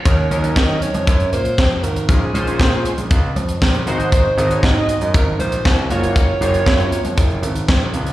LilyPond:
<<
  \new Staff \with { instrumentName = "Alto saxophone" } { \time 4/4 \key ees \dorian \tempo 4 = 118 des''8. ees''8. des''4 c''4 bes'8 | aes'2 r2 | c''8. des''16 ees''4 bes'8 c''4 des''8~ | des''2. r4 | }
  \new Staff \with { instrumentName = "Analog polysynth" } { \time 4/4 \key ees \dorian <ges des' ees' bes'>8 <f ges des' ees' bes'>4 r2 r8 | <aes des' f' bes'>8 <aes des' f' c''>4 r2 <aes ees' ges' c''>8~ | <aes ees' ges' c''>8 <aes ees' ges' ees''>4 r2 <bes f' ges' des''>8~ | <bes f' ges' des''>8 <bes f' ges' c'' des''>4 r2 r8 | }
  \new Staff \with { instrumentName = "Grand piano" } { \clef bass \time 4/4 \key ees \dorian ees,8 ees,8 ees8 r16 f,16 ges,8 bes,8 f,8 aes,,8 | bes,,8 bes,,8 bes,8 r16 bes,,16 des,8 f,8 bes,,8 aes,,8~ | aes,,8 aes,,8 aes,8 r16 ges,16 aes,,8 bes,,8 c,8 ges,,8~ | ges,,8 ges,,8 ges,8 r16 f,16 ges,,8 aes,,8 bes,,8 des,8 | }
  \new DrumStaff \with { instrumentName = "Drums" } \drummode { \time 4/4 <hh bd>8 hh16 hh16 <bd sn>8 hh16 hh16 <hh bd>16 hh16 hh16 hh16 <bd sn>8 hh16 hh16 | <hh bd>8 hh16 hh16 <bd sn>8 hh16 hh16 <hh bd>8 hh16 hh16 <bd sn>16 hh16 hh16 hh16 | <hh bd>8 hh16 hh16 <bd sn>8 hh16 hh16 <hh bd>8 hh16 hh16 <bd sn>8 hh16 hh16 | <hh bd>8 hh16 hh16 <bd sn>16 hh16 hh16 hh16 <hh bd>16 hh16 hh16 hh16 <bd sn>8 hh16 hh16 | }
>>